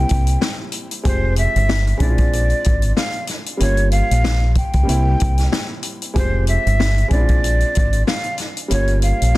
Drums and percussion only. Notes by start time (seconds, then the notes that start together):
0.09 kick, closed hi-hat
0.27 closed hi-hat
0.41 snare
0.72 closed hi-hat
0.91 closed hi-hat
1.05 kick, closed hi-hat
1.36 closed hi-hat
1.56 closed hi-hat
1.69 snare
1.87 closed hi-hat
2.00 kick, closed hi-hat
2.18 kick, closed hi-hat
2.33 closed hi-hat
2.50 closed hi-hat
2.64 kick, closed hi-hat
2.82 closed hi-hat
2.97 snare
3.13 closed hi-hat
3.27 snare, closed hi-hat
3.46 closed hi-hat
3.60 closed hi-hat
3.77 closed hi-hat
3.92 closed hi-hat
4.11 closed hi-hat
4.24 snare
4.55 kick, closed hi-hat
4.73 kick, closed hi-hat
4.89 closed hi-hat
5.20 kick, closed hi-hat
5.38 snare, closed hi-hat
5.52 snare
5.83 closed hi-hat
6.02 closed hi-hat
6.16 kick, closed hi-hat
6.47 closed hi-hat
6.67 closed hi-hat
6.80 snare
6.98 closed hi-hat
7.11 kick, closed hi-hat
7.29 kick, closed hi-hat
7.44 closed hi-hat
7.60 closed hi-hat
7.75 kick, closed hi-hat
7.93 closed hi-hat
8.07 snare
8.24 closed hi-hat
8.38 snare, closed hi-hat
8.57 closed hi-hat
8.71 closed hi-hat
8.88 closed hi-hat
9.02 closed hi-hat
9.22 closed hi-hat